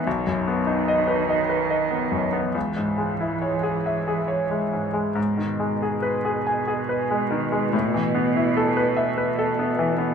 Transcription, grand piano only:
X:1
M:3/4
L:1/16
Q:1/4=71
K:C#m
V:1 name="Grand piano"
B,,, F,, B, D d B d B d B, F,, B, | C,, G,, G, E c G e G c G, G,, G, | G,, D, G, G B G g G B G, D, G, | A,, E, B, E A B e B A B, E, B, |]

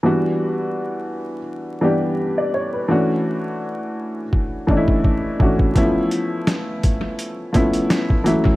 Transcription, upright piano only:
X:1
M:4/4
L:1/16
Q:"Swing 16ths" 1/4=84
K:Edor
V:1 name="Upright piano"
z12 z d c B- | B z12 z3 | z16 |]
V:2 name="Upright piano"
[E,G,B,DF]8 z2 [E,G,B,DG]4 z2 | [E,A,CDF]8 z2 [E,A,CD^DE]4 [E,A,C=DF]2 | [E,^E,A,B,C=E]8 z2 [^E,A,B,C=E]4 [=E,F,A,CE]2 |]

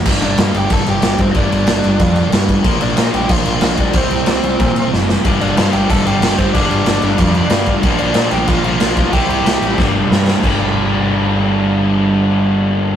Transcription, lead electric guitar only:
X:1
M:4/4
L:1/8
Q:1/4=185
K:Gm
V:1 name="Lead electric guitar"
z [Dd] [Ff] [Gg] [Aa] [Gg]2 [Cc] | [Dd]6 z2 | z [Dd] [Ff] [Gg] [Ff]2 [Ff] [Dd] | [Cc]6 z2 |
z [Dd] [Ff] [Gg] [Aa] [Gg]2 [Cc] | [Dd]6 z2 | z [Dd]2 [Gg] [Ff] [Ff]3 | [Gg]6 z2 |
z8 | z8 |]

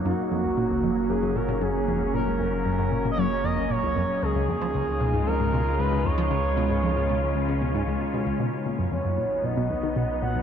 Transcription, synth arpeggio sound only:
X:1
M:4/4
L:1/16
Q:1/4=115
K:F#
V:1 name="Synth arpeggio sound" clef=bass
F,, z E,, C,, A,, C,, E,, z F,, F,, A,, A,, F,, z E,, C,, | A,, C,, E,, z F,, F,, A,, A,, F,, z E,, C,, A,, C,, E,, z | C,, C,, E,, E, C,, z B,, G,, E,, G,, B,, z C,, C,, E,, E, | C,, z B,, G,, E,, G,, B,, z C,, C,, B,, G,, C,, z B,, C,, |
B,, z A,, F,, E,, F,, A,, z B,, B,, D,, D, B,, z A,, F,, |]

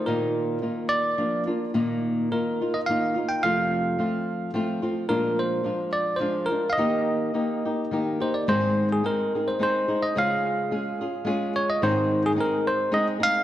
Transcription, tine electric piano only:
X:1
M:3/4
L:1/16
Q:1/4=107
K:Eb
V:1 name="Tine electric piano"
B4 z2 d4 z2 | z4 B3 e f3 g | f8 z4 | B2 c4 d2 c2 B3/2 f/2 |
e8 z2 c d | [K:Ab] c3 A B3 c c3 e | f8- f2 d e | c3 A B2 c2 e2 f2 |]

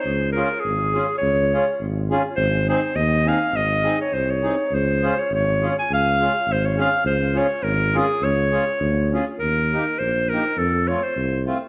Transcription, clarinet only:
X:1
M:2/4
L:1/16
Q:"Swing" 1/4=103
K:Db
V:1 name="Clarinet"
c2 B2 A4 | d4 z4 | c2 c2 e2 f2 | e3 d c d3 |
c3 d d3 a | f4 c d f2 | c2 d2 B2 A2 | d6 z2 |
[K:Ebmix] B4 c2 B2 | =A2 d c3 z2 |]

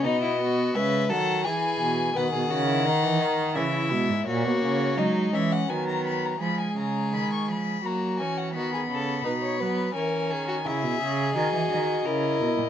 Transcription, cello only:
X:1
M:3/4
L:1/16
Q:1/4=85
K:C#m
V:1 name="Cello" clef=bass
B,,4 C,2 D,2 E,2 B,,2 | B,, B,, C,2 D, E, D,2 C,2 B,, G,, | ^A,, B,, C,2 F,2 E,2 D,4 | ^E,2 C,2 D,2 E,2 F,2 =E,2 |
D,2 C,2 B,,2 F,2 E,2 D,2 | C, B,, C,2 D, E, D,2 C,2 B,, ^A,, |]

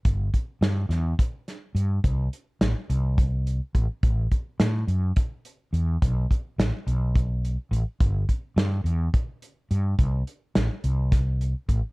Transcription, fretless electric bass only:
X:1
M:7/8
L:1/16
Q:1/4=106
K:Em
V:1 name="Fretless electric bass" clef=bass
G,,,2 z2 G,,2 E,,2 z4 G,,2 | C,,2 z2 A,,, z C,,6 A,,, z | A,,,2 z2 A,,2 F,,2 z4 E,,2 | B,,,2 z2 A,,, z B,,,6 A,,, z |
G,,,2 z2 G,,2 E,,2 z4 G,,2 | C,,2 z2 A,,, z C,,6 A,,, z |]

